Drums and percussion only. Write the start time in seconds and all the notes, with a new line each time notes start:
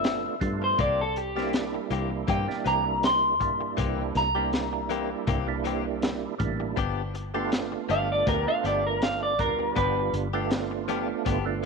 0.04 snare, closed hi-hat
0.41 kick, closed hi-hat
0.79 kick, closed hi-hat
1.16 closed hi-hat
1.37 snare
1.53 snare, closed hi-hat
1.91 closed hi-hat
2.28 kick, closed hi-hat
2.50 snare
2.66 closed hi-hat
3.03 snare, closed hi-hat
3.41 kick, closed hi-hat
3.78 kick, closed hi-hat
4.15 snare, closed hi-hat
4.53 snare, closed hi-hat
4.90 closed hi-hat
5.27 kick, closed hi-hat
5.65 closed hi-hat
6.02 snare, closed hi-hat
6.40 kick, closed hi-hat
6.77 kick, closed hi-hat
7.15 closed hi-hat
7.52 snare, closed hi-hat
7.90 closed hi-hat
8.27 kick, closed hi-hat
8.65 closed hi-hat
9.02 snare, closed hi-hat
9.39 kick, closed hi-hat
9.76 kick, closed hi-hat
10.14 closed hi-hat
10.51 snare, closed hi-hat
10.89 closed hi-hat
11.26 kick, closed hi-hat